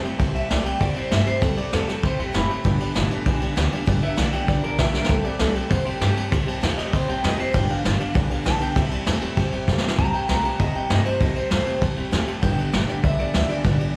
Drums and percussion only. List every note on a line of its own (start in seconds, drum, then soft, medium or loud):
0.05 ride medium
0.20 kick loud
0.20 ride medium
0.35 ride medium
0.50 snare loud
0.50 ride medium
0.66 ride medium
0.81 kick loud
0.81 ride medium
0.96 ride medium
1.11 snare loud
1.11 ride medium
1.27 ride medium
1.42 kick loud
1.42 ride medium
1.57 ride medium
1.73 snare loud
1.73 ride medium
1.88 snare soft
1.88 ride medium
2.03 kick loud
2.03 ride medium
2.19 ride medium
2.34 snare loud
2.34 ride medium
2.50 ride medium
2.65 kick loud
2.65 ride medium
2.80 ride medium
2.95 snare loud
2.95 ride medium
3.11 ride medium
3.26 kick loud
3.26 ride medium
3.41 ride medium
3.57 snare loud
3.57 ride medium
3.72 ride medium
3.87 kick loud
3.87 ride medium
4.03 ride medium
4.17 snare loud
4.17 ride medium
4.33 ride medium
4.48 kick loud
4.48 ride medium
4.64 ride medium
4.79 kick medium
4.79 snare loud
4.79 ride medium
4.94 snare medium
5.04 snare medium
5.09 kick loud
5.09 ride medium
5.24 ride medium
5.39 snare loud
5.39 ride medium
5.55 ride medium
5.71 kick loud
5.71 ride medium
5.86 ride medium
6.01 snare loud
6.01 ride medium
6.17 ride medium
6.32 kick loud
6.32 ride medium
6.48 ride medium
6.63 snare loud
6.63 ride medium
6.78 snare soft
6.78 ride medium
6.93 kick loud
6.93 ride medium
7.09 ride medium
7.24 snare loud
7.24 ride medium
7.40 ride medium
7.54 kick loud
7.54 ride medium
7.70 ride medium
7.85 snare loud
7.85 ride medium
8.00 ride medium
8.15 kick loud
8.15 ride medium
8.31 ride medium
8.46 snare loud
8.46 ride medium
8.61 ride medium
8.76 kick loud
8.76 ride medium
8.91 ride medium
9.07 snare loud
9.07 ride medium
9.22 ride medium
9.37 kick loud
9.37 ride medium
9.52 ride medium
9.68 kick medium
9.68 snare medium
9.78 snare medium
9.88 snare loud
9.98 kick loud
9.98 ride medium
10.14 ride medium
10.29 snare loud
10.29 ride medium
10.44 ride medium
10.60 kick loud
10.60 ride medium
10.75 ride medium
10.90 snare loud
10.90 ride medium
11.05 ride medium
11.20 kick loud
11.20 ride medium
11.36 ride medium
11.51 snare loud
11.51 ride medium
11.66 ride medium
11.82 kick loud
11.82 ride medium
11.97 ride medium
12.12 snare loud
12.12 ride medium
12.27 ride medium
12.43 kick loud
12.43 ride medium
12.58 ride medium
12.73 snare loud
12.73 ride medium
12.89 snare soft
12.89 ride medium
13.04 kick loud
13.04 ride medium
13.19 ride medium
13.34 snare loud
13.34 ride medium
13.50 ride medium
13.65 kick loud
13.65 ride medium
13.80 ride medium